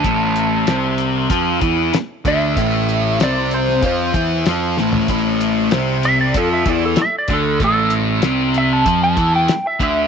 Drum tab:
HH |x-x-x-x-x-x-x-x-|x-x-x-x-x-x-x---|x-x-x-x-x-x-x-x-|x-x-x-x-x-x-x-x-|
SD |----o-------o---|----o--o----o-o-|----o-------o---|----o-------o---|
FT |----------------|---------------o|----------------|----------------|
BD |o-------o-o---o-|o-------o-o-----|o-------o-o---o-|o-------o-o---o-|